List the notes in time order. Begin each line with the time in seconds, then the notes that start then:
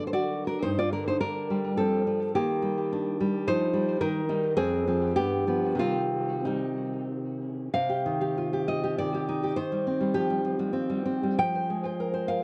Already playing: D3 F#3
0.07 C5
0.13 F#4 D5
0.47 D4 A#4
0.62 G2 D#4 C5
0.79 F4 D5
0.93 D3 D4 A#4
1.08 D#4 C5
1.21 D4 A#4
1.50 G3
1.77 F3 C4 A4
2.07 G3
2.35 D#3 A#3 G4
2.62 G3
2.93 D4
3.21 G3
3.47 F3 D#4 C5
3.73 G3
4.01 D#3 D#4 A#4
4.29 G3 D#4
4.57 F2 C4 G#4
4.88 F3 C4
5.16 G2 B3 G4
5.47 F3 B3
5.75 C3 D#3 G3
5.79 C4 F4
6.45 G3 D#4
7.74 C3 F5
7.89 G4
8.06 D#3
8.21 G4
8.38 F4
8.53 G4
8.68 F4 D#5
8.84 G4
8.98 D#3 D5
9.14 G4
9.29 D#4
9.43 G4
9.56 D#3 C5
9.72 G3
9.87 C4
10.01 G3
10.14 F3 G4
10.30 G3
10.45 F3
10.59 G3
10.73 C4
10.90 G3
11.06 C4
11.23 G3
11.39 F3 G5
11.55 C5
11.70 G#3
11.85 C5
12.00 A#4
12.13 C5
12.28 A#4 F5